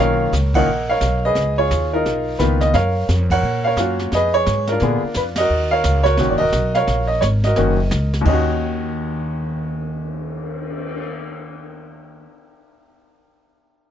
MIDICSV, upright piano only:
0, 0, Header, 1, 2, 480
1, 0, Start_track
1, 0, Key_signature, -6, "minor"
1, 0, Tempo, 344828
1, 1896, Time_signature, 4, 2, 24, 8
1, 19361, End_track
2, 0, Start_track
2, 0, Title_t, "Upright piano"
2, 0, Program_c, 0, 0
2, 0, Note_on_c, 0, 51, 73
2, 0, Note_on_c, 0, 58, 70
2, 0, Note_on_c, 0, 61, 72
2, 0, Note_on_c, 0, 65, 84
2, 0, Note_on_c, 0, 70, 75
2, 0, Note_on_c, 0, 73, 76
2, 0, Note_on_c, 0, 77, 107
2, 425, Note_off_c, 0, 77, 0
2, 427, Note_off_c, 0, 58, 0
2, 428, Note_off_c, 0, 51, 0
2, 431, Note_off_c, 0, 61, 0
2, 435, Note_off_c, 0, 65, 0
2, 760, Note_off_c, 0, 70, 0
2, 768, Note_on_c, 0, 78, 109
2, 773, Note_on_c, 0, 75, 75
2, 776, Note_on_c, 0, 51, 74
2, 778, Note_on_c, 0, 58, 68
2, 781, Note_on_c, 0, 70, 64
2, 786, Note_on_c, 0, 61, 65
2, 788, Note_on_c, 0, 65, 81
2, 889, Note_off_c, 0, 73, 0
2, 926, Note_off_c, 0, 51, 0
2, 927, Note_off_c, 0, 58, 0
2, 932, Note_off_c, 0, 61, 0
2, 932, Note_off_c, 0, 65, 0
2, 1245, Note_on_c, 0, 77, 96
2, 1248, Note_off_c, 0, 70, 0
2, 1258, Note_off_c, 0, 78, 0
2, 1265, Note_on_c, 0, 73, 69
2, 1269, Note_on_c, 0, 70, 67
2, 1670, Note_off_c, 0, 75, 0
2, 1736, Note_off_c, 0, 77, 0
2, 1742, Note_on_c, 0, 75, 100
2, 1747, Note_on_c, 0, 71, 71
2, 1757, Note_on_c, 0, 68, 67
2, 1864, Note_off_c, 0, 73, 0
2, 1866, Note_off_c, 0, 70, 0
2, 2196, Note_off_c, 0, 68, 0
2, 2201, Note_on_c, 0, 73, 92
2, 2216, Note_on_c, 0, 65, 68
2, 2217, Note_on_c, 0, 68, 64
2, 2224, Note_off_c, 0, 75, 0
2, 2637, Note_off_c, 0, 71, 0
2, 2647, Note_off_c, 0, 73, 0
2, 2689, Note_off_c, 0, 65, 0
2, 2692, Note_on_c, 0, 70, 84
2, 2707, Note_on_c, 0, 63, 63
2, 2710, Note_on_c, 0, 65, 63
2, 3112, Note_off_c, 0, 68, 0
2, 3297, Note_off_c, 0, 70, 0
2, 3325, Note_on_c, 0, 71, 79
2, 3333, Note_off_c, 0, 65, 0
2, 3341, Note_on_c, 0, 51, 57
2, 3345, Note_on_c, 0, 58, 49
2, 3347, Note_on_c, 0, 59, 56
2, 3354, Note_on_c, 0, 65, 70
2, 3597, Note_off_c, 0, 63, 0
2, 3629, Note_on_c, 0, 75, 95
2, 3643, Note_off_c, 0, 71, 0
2, 3798, Note_off_c, 0, 75, 0
2, 3818, Note_off_c, 0, 51, 0
2, 3819, Note_on_c, 0, 77, 95
2, 3820, Note_off_c, 0, 58, 0
2, 3821, Note_off_c, 0, 59, 0
2, 3823, Note_on_c, 0, 73, 66
2, 3825, Note_off_c, 0, 65, 0
2, 3826, Note_on_c, 0, 70, 73
2, 4264, Note_off_c, 0, 77, 0
2, 4601, Note_off_c, 0, 73, 0
2, 4602, Note_off_c, 0, 70, 0
2, 4614, Note_on_c, 0, 78, 110
2, 4622, Note_on_c, 0, 73, 66
2, 4623, Note_on_c, 0, 70, 69
2, 5072, Note_on_c, 0, 77, 97
2, 5079, Note_off_c, 0, 70, 0
2, 5086, Note_off_c, 0, 73, 0
2, 5099, Note_on_c, 0, 70, 69
2, 5101, Note_off_c, 0, 78, 0
2, 5107, Note_on_c, 0, 73, 68
2, 5276, Note_on_c, 0, 65, 61
2, 5282, Note_on_c, 0, 58, 57
2, 5291, Note_on_c, 0, 61, 54
2, 5293, Note_on_c, 0, 66, 73
2, 5701, Note_off_c, 0, 70, 0
2, 5704, Note_off_c, 0, 73, 0
2, 5746, Note_off_c, 0, 65, 0
2, 5749, Note_off_c, 0, 58, 0
2, 5752, Note_off_c, 0, 77, 0
2, 5753, Note_off_c, 0, 61, 0
2, 5754, Note_off_c, 0, 66, 0
2, 5766, Note_on_c, 0, 75, 105
2, 5775, Note_on_c, 0, 68, 68
2, 5782, Note_on_c, 0, 71, 76
2, 6038, Note_off_c, 0, 68, 0
2, 6041, Note_on_c, 0, 73, 107
2, 6059, Note_on_c, 0, 68, 69
2, 6063, Note_off_c, 0, 75, 0
2, 6529, Note_on_c, 0, 70, 89
2, 6534, Note_off_c, 0, 73, 0
2, 6565, Note_on_c, 0, 65, 66
2, 6573, Note_on_c, 0, 62, 60
2, 6660, Note_off_c, 0, 68, 0
2, 6663, Note_off_c, 0, 71, 0
2, 6711, Note_on_c, 0, 50, 63
2, 6718, Note_on_c, 0, 58, 59
2, 6718, Note_on_c, 0, 59, 62
2, 6726, Note_on_c, 0, 68, 76
2, 6976, Note_off_c, 0, 50, 0
2, 6980, Note_off_c, 0, 58, 0
2, 6980, Note_off_c, 0, 59, 0
2, 6984, Note_off_c, 0, 68, 0
2, 7135, Note_off_c, 0, 70, 0
2, 7194, Note_on_c, 0, 71, 80
2, 7264, Note_off_c, 0, 71, 0
2, 7446, Note_off_c, 0, 65, 0
2, 7450, Note_off_c, 0, 62, 0
2, 7484, Note_on_c, 0, 75, 97
2, 7514, Note_on_c, 0, 70, 71
2, 7516, Note_on_c, 0, 66, 70
2, 7950, Note_on_c, 0, 77, 106
2, 7956, Note_off_c, 0, 70, 0
2, 7971, Note_on_c, 0, 73, 63
2, 7976, Note_off_c, 0, 75, 0
2, 7977, Note_on_c, 0, 70, 69
2, 8380, Note_off_c, 0, 73, 0
2, 8400, Note_off_c, 0, 66, 0
2, 8400, Note_on_c, 0, 73, 104
2, 8401, Note_off_c, 0, 77, 0
2, 8408, Note_off_c, 0, 70, 0
2, 8421, Note_on_c, 0, 66, 68
2, 8429, Note_on_c, 0, 70, 69
2, 8607, Note_off_c, 0, 66, 0
2, 8626, Note_on_c, 0, 58, 58
2, 8627, Note_on_c, 0, 51, 63
2, 8628, Note_on_c, 0, 66, 70
2, 8633, Note_on_c, 0, 61, 56
2, 8761, Note_on_c, 0, 74, 70
2, 8788, Note_off_c, 0, 73, 0
2, 8880, Note_on_c, 0, 75, 112
2, 8892, Note_off_c, 0, 66, 0
2, 8893, Note_off_c, 0, 70, 0
2, 8894, Note_off_c, 0, 58, 0
2, 8895, Note_off_c, 0, 51, 0
2, 8897, Note_off_c, 0, 61, 0
2, 8902, Note_off_c, 0, 74, 0
2, 8913, Note_on_c, 0, 66, 74
2, 8913, Note_on_c, 0, 70, 74
2, 9345, Note_off_c, 0, 75, 0
2, 9390, Note_on_c, 0, 77, 92
2, 9405, Note_off_c, 0, 70, 0
2, 9419, Note_on_c, 0, 73, 77
2, 9426, Note_on_c, 0, 70, 66
2, 9821, Note_off_c, 0, 66, 0
2, 9841, Note_off_c, 0, 77, 0
2, 9847, Note_on_c, 0, 75, 85
2, 10012, Note_off_c, 0, 73, 0
2, 10027, Note_off_c, 0, 75, 0
2, 10033, Note_on_c, 0, 73, 79
2, 10104, Note_off_c, 0, 73, 0
2, 10317, Note_off_c, 0, 70, 0
2, 10357, Note_on_c, 0, 75, 88
2, 10391, Note_on_c, 0, 66, 61
2, 10391, Note_on_c, 0, 70, 63
2, 10527, Note_off_c, 0, 66, 0
2, 10535, Note_on_c, 0, 51, 64
2, 10540, Note_on_c, 0, 58, 59
2, 10543, Note_on_c, 0, 61, 61
2, 10548, Note_on_c, 0, 66, 74
2, 10808, Note_off_c, 0, 51, 0
2, 10811, Note_off_c, 0, 58, 0
2, 10813, Note_off_c, 0, 61, 0
2, 10815, Note_off_c, 0, 66, 0
2, 11263, Note_off_c, 0, 75, 0
2, 11280, Note_off_c, 0, 70, 0
2, 11428, Note_on_c, 0, 39, 69
2, 11481, Note_on_c, 0, 51, 61
2, 11508, Note_on_c, 0, 75, 75
2, 11539, Note_on_c, 0, 61, 69
2, 11596, Note_on_c, 0, 66, 81
2, 17048, Note_off_c, 0, 39, 0
2, 17073, Note_off_c, 0, 75, 0
2, 17101, Note_off_c, 0, 51, 0
2, 17159, Note_off_c, 0, 61, 0
2, 17216, Note_off_c, 0, 66, 0
2, 19361, End_track
0, 0, End_of_file